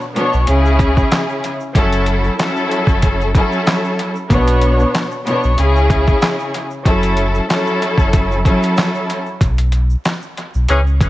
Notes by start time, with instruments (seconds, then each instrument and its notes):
0.01 shaker
0.15 string section B2 B3 D4 C#5, closed hi-hat, shaker
0.33 sub bass B1, shaker
0.46 sub bass C#2, string section C#3 C#4 E4 G#4, closed hi-hat, shaker
0.66 shaker
0.79 kick, closed hi-hat, shaker
0.97 kick, shaker
1.11 snare, clap, closed hi-hat, shaker
1.29 shaker
1.44 closed hi-hat, shaker
1.60 shaker
1.73 sub bass F#1, string section F#3 C#4 E4 A4, kick, closed hi-hat, shaker
1.92 closed hi-hat, shaker
2.06 closed hi-hat
2.24 shaker
2.38 string section F#3 C#4 E4 A4, snare, clap, closed hi-hat, shaker
2.56 shaker
2.71 closed hi-hat, shaker
2.87 sub bass F#1, kick, shaker
3.02 kick, closed hi-hat, shaker
3.21 shaker
3.33 string section F#3 C#4 E4 A4, kick, closed hi-hat, shaker
3.52 shaker
3.66 snare, clap, closed hi-hat, shaker
3.84 shaker
3.99 closed hi-hat, shaker
4.15 shaker
4.29 sub bass B1, string section B2 B3 D4 C#5, kick, closed hi-hat, shaker
4.48 closed hi-hat, shaker
4.62 closed hi-hat
4.79 shaker
4.94 snare, clap, closed hi-hat, shaker
5.11 shaker
5.26 string section B2 B3 D4 C#5, closed hi-hat, shaker
5.43 sub bass B1, shaker
5.57 sub bass C#2, string section C#3 C#4 E4 G#4, closed hi-hat, shaker
5.76 shaker
5.90 kick, closed hi-hat, shaker
6.07 kick, shaker
6.22 snare, clap, closed hi-hat, shaker
6.40 shaker
6.54 closed hi-hat, shaker
6.71 shaker
6.84 sub bass F#1, string section F#3 C#4 E4 A4, kick, closed hi-hat, shaker
7.03 closed hi-hat, shaker
7.17 closed hi-hat
7.35 shaker
7.48 string section F#3 C#4 E4 A4, snare, clap, closed hi-hat, shaker
7.67 shaker
7.82 closed hi-hat, shaker
7.98 sub bass F#1, kick, shaker
8.13 kick, closed hi-hat, shaker
8.31 shaker
8.44 string section F#3 C#4 E4 A4, kick, closed hi-hat, shaker
8.62 closed hi-hat, shaker
8.77 snare, clap, closed hi-hat, shaker
8.95 shaker
9.09 closed hi-hat, shaker
9.26 shaker
9.41 sub bass B1, kick, closed hi-hat, shaker
9.58 closed hi-hat, shaker
9.72 closed hi-hat
9.90 shaker
10.05 snare, clap, closed hi-hat, shaker
10.22 shaker
10.37 closed hi-hat
10.54 sub bass B1, shaker
10.68 sub bass C#2, horn section E3 C#4 G#4, closed hi-hat, shaker
10.87 shaker
11.00 kick, closed hi-hat, shaker